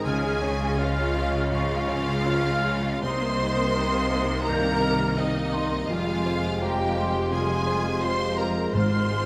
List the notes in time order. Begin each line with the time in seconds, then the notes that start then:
Already playing: G#3 F4
0.05 C#2 C#3 F3 C#4 G#4 G#5 F6
0.25 G#3 F4
0.30 G#3
0.41 F3 G#3 C#4 C#5 C#6
0.55 F4
0.61 G#3 F4
0.78 F3 C#4 F4 C#5 F5 F6
0.97 G#3 F4
1.03 F4
1.14 F3 G#3 C#4 C#5
1.28 G#3
1.33 G#3 F4
1.51 G#2 F3 C#4 F4 F5 C#6
1.70 G#3 F4
1.76 G#3
1.88 F3 G#3 C#4 C#5
2.00 F4
2.07 G#3 F4
2.25 F3 C#4 F4 C#5 F6
2.44 G#3 F4
2.51 F4
2.64 F3 G#3 C#4 C#5
2.78 G#3
2.84 G#3 F4
3.02 C2 C3 A#3 C4 D#4 C5 C6 D#6
3.23 A#3 C4
3.29 A#3
3.41 A#3 C4 D#4 D#5 D#6
3.53 A#4
3.58 A#3 C4
3.76 C4 D#4 G4 D#5
3.94 A#3 C4
4.00 D#4
4.12 A#3 C4 D#4 D#5
4.24 A#3
4.29 A#3 C4
4.47 G2 D#3 C4 D#4 A#4 A#5 G6
4.65 A#3 C4
4.71 A#3
4.82 A#3 C4 D#4 D#5 F6
5.01 A#3 C4
5.17 C4 D#4 G4 D#5 D#6
5.36 A#3 C4
5.53 A#3 C4 D#4 D#5 C6
5.65 A#3
5.73 A#3 C4
5.89 F1 F2 G3 G#3 F4 F5 G#5
6.09 G#3 G4
6.14 G#3
6.25 G3 G#3 F4 C5
6.38 F4
6.45 G#3 G4
6.61 G3 C4 F4 G4 C5 G5 A#5
6.80 G#3 G4
6.85 F4
6.96 G3 G#3 F4 C5 C6
7.09 G#3
7.15 G#3 G4
7.31 C3 G3 F4 G#4 G#5
7.51 G#3 G4
7.56 G#3
7.66 G3 G#3 F4 C5
7.79 F4
7.86 G#3 G4
8.02 G3 F4 G4 C5 C6
8.21 G#3 G4
8.27 F4
8.38 G3 G#3 F4 A#4 C5 A#5
8.50 G#3
8.57 G#3 G4
8.73 G#1 G#2 G#3 F4 C5 C6 F6
8.98 G#3
9.11 G#3 G#4
9.22 F4